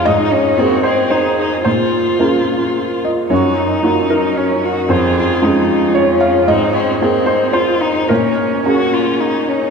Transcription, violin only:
X:1
M:3/4
L:1/8
Q:1/4=112
K:Bbm
V:1 name="Violin"
E D C C E E | F4- F z | E4 D G | F F E2 D2 |
C C C2 F E | D2 G F E D |]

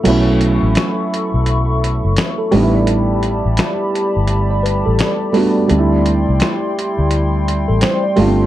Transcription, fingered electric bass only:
X:1
M:4/4
L:1/16
Q:"Swing 16ths" 1/4=85
K:Bphr
V:1 name="Fingered electric bass" clef=bass
B,,,3 A,,, z3 B,,,4 F,,, z2 A,,,2- | A,,,3 A,,, z3 G,,,4 A,,, z4 | D,,3 C,, z3 D,,4 A,,, z2 G,,,2 |]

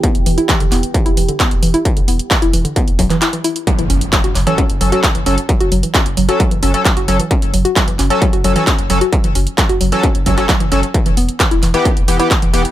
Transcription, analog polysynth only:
X:1
M:4/4
L:1/16
Q:1/4=132
K:F#phr
V:1 name="Analog polysynth"
z16 | z16 | z6 z [F,CA] z2 [F,CA] [F,CA] z2 [F,CA] z | z6 z [F,CA] z2 [F,CA] [F,CA] z2 [F,CA] z |
z6 z [F,CA] z2 [F,CA] [F,CA] z2 [F,CA] z | z6 z [F,CA] z2 [F,CA] [F,CA] z2 [F,CA] z | z6 z [E,B,G] z2 [E,B,G] [E,B,G] z2 [E,B,G] z |]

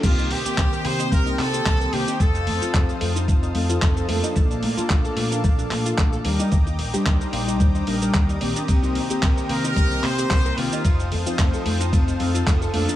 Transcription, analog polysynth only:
X:1
M:4/4
L:1/16
Q:"Swing 16ths" 1/4=111
K:Cdor
V:1 name="Analog polysynth"
[E,B,CG]3 [E,B,CG]8- [E,B,CG]3 [E,B,CG]2 | z3 [F,CEc]6- [F,CEc] [F,CEA] [F,CEA]3 [F,B,DA]2- | [F,B,DA]3 [F,B,DA]8- [F,B,DA]3 [G,DEB]2 | z3 [G,DEc]6- [G,DEc] [G,DEB] [G,DEB]3 [E,B,CG]2- |
[E,B,CG]3 [E,B,CG]8- [E,B,CG]3 [E,B,CG]2 | z3 [F,CEc]6- [F,CEc] [F,CEA] [F,CEA]3 [F,B,DA]2 |]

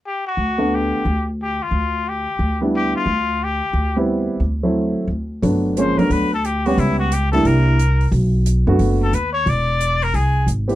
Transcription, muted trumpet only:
X:1
M:4/4
L:1/8
Q:"Swing" 1/4=178
K:G
V:1 name="Muted trumpet"
G F3 G3 z | G =F3 G3 z | G =F3 G3 z | z8 |
z2 c _B =B A G F | E F G A _B4 | z4 z A B ^c | d3 _B ^G2 z2 |]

